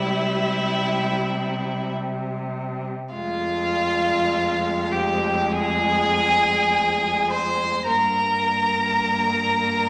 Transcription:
Already playing: C3 G3 E4 E5
3.14 F2 G#3 F4 F5
4.91 G4 G5
5.51 G#4 G#5
7.30 C5 C6
7.87 G2 A#3 A#4 A#5

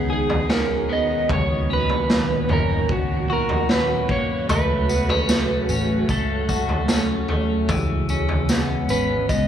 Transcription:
Already playing: C#2 B2 D#3 B3 C#4 D#4 G#4
0.10 G#4
0.30 floor tom
0.50 C#4 A#4, snare
0.89 B3 D#5
1.29 C#2 A#2 D#3 F#4 C#5, kick, floor tom
1.70 C#4 B4
1.89 floor tom
2.10 snare
2.49 F#1 C#4 A#4, floor tom
2.89 C#2 F#4, kick
3.30 F#4 A#4
3.49 floor tom
3.69 C#4 B4, snare
4.09 A#3 C#5, kick
4.49 C#2 C#3 A3 C#4 B4, floor tom, tambourine
4.89 B3, tambourine
5.09 C#4, floor tom
5.29 A3, snare, tambourine
5.69 A1 C#4, tambourine
6.09 C#2 A3 A4, kick, tambourine
6.49 F#4, kick, tambourine
6.69 floor tom
6.88 C#4, snare, tambourine
7.28 A3, floor tom
7.68 C#2 B2 C#3 E3 G#3 C#4, kick, floor tom, tambourine
8.09 C#4, tambourine
8.29 floor tom
8.49 B3, snare, tambourine
8.89 G#1 C#4 B4, tambourine
9.29 C#2 B3 D#5, kick, tambourine

